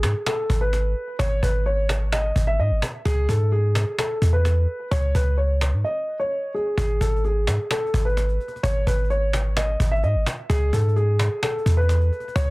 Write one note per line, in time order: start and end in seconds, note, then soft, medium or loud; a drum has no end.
0.00 0.14 G#2 loud
0.00 0.24 G#4 medium
0.00 cajon slap loud
0.00 cajon slap medium
0.26 0.59 A4 medium
0.26 cajon slap loud
0.50 0.94 G#1 loud
0.50 cajon bass medium
0.61 1.16 B4 medium
0.73 cajon slap medium
1.19 1.42 G#1 loud
1.19 1.39 C#5 loud
1.19 cajon bass loud
1.43 2.32 G#1 loud
1.43 1.63 B4 medium
1.43 cajon bass medium
1.66 2.10 C#5 medium
1.89 cajon slap loud
1.89 cajon slap medium
2.12 2.45 D#5 medium
2.12 cajon slap loud
2.12 cajon slap medium
2.36 2.60 G#1 loud
2.36 cajon bass medium
2.47 2.57 E5 medium
2.59 2.72 G#2 loud
2.59 2.80 D#5 medium
2.71 2.82 G#1 loud
2.82 cajon slap loud
2.82 cajon slap medium
3.05 3.28 C#2 loud
3.05 3.26 G#4 loud
3.05 cajon bass loud
3.29 3.85 G#2 loud
3.29 3.49 A4 medium
3.29 cajon bass medium
3.52 3.96 G#4 medium
3.75 cajon slap loud
3.75 cajon slap medium
3.98 4.31 A4 medium
3.98 cajon slap loud
4.22 4.66 E2 loud
4.22 cajon bass medium
4.33 4.88 B4 medium
4.45 cajon slap medium
4.91 5.14 C#2 loud
4.91 5.12 C#5 loud
4.91 cajon bass loud
5.15 5.74 C#2 loud
5.15 5.35 B4 medium
5.15 cajon bass medium
5.37 5.81 C#5 medium
5.61 cajon slap loud
5.61 cajon slap medium
5.73 5.84 G#2 loud
5.84 6.17 D#5 medium
6.20 6.52 C#5 medium
6.54 6.75 G#4 medium
6.78 7.00 G#1 loud
6.78 6.98 G#4 medium
6.78 cajon bass loud
7.01 7.49 G#1 loud
7.01 7.21 A4 medium
7.01 cajon bass medium
7.09 cajon slap soft
7.16 cajon slap soft
7.24 7.68 G#4 medium
7.24 cajon slap soft
7.47 7.58 G#2 loud
7.47 cajon slap loud
7.47 cajon slap medium
7.71 8.04 A4 medium
7.71 cajon slap loud
7.71 cajon slap medium
7.78 cajon slap soft
7.86 cajon slap soft
7.94 8.39 G#1 loud
7.94 cajon bass loud
8.02 8.60 B4 medium
8.02 cajon slap soft
8.09 cajon slap soft
8.17 cajon slap medium
8.29 cajon slap soft
8.40 cajon slap soft
8.48 cajon slap soft
8.56 cajon slap soft
8.63 8.86 G#1 loud
8.63 8.84 C#5 loud
8.63 cajon bass loud
8.87 9.76 G#1 loud
8.87 9.07 B4 medium
8.87 cajon bass medium
8.93 cajon slap soft
8.99 cajon slap soft
9.04 cajon slap soft
9.10 9.54 C#5 medium
9.10 cajon slap soft
9.33 cajon slap loud
9.33 cajon slap medium
9.57 9.90 D#5 medium
9.57 cajon slap loud
9.57 cajon slap medium
9.80 10.05 G#1 loud
9.80 cajon bass loud
9.88 10.02 E5 medium
9.88 cajon slap soft
9.95 cajon slap soft
10.03 10.16 G#2 loud
10.03 10.24 D#5 medium
10.03 cajon slap soft
10.15 10.26 G#1 loud
10.26 cajon slap loud
10.26 cajon slap medium
10.50 10.72 C#2 loud
10.50 10.70 G#4 loud
10.50 cajon bass loud
10.73 11.29 G#2 loud
10.73 10.94 A4 medium
10.73 cajon bass medium
10.81 cajon slap soft
10.88 cajon slap soft
10.96 11.40 G#4 medium
10.96 cajon slap soft
11.19 cajon slap loud
11.19 cajon slap medium
11.42 11.75 A4 medium
11.42 cajon slap loud
11.42 cajon slap medium
11.51 cajon slap soft
11.58 cajon slap soft
11.66 12.11 E2 loud
11.66 cajon bass medium
11.74 12.32 B4 medium
11.74 cajon slap soft
11.81 cajon slap soft
11.89 cajon slap medium
12.01 cajon slap soft
12.12 cajon slap soft
12.20 cajon slap soft
12.28 cajon slap soft
12.36 12.50 C#2 loud
12.36 12.50 C#5 loud
12.36 cajon bass loud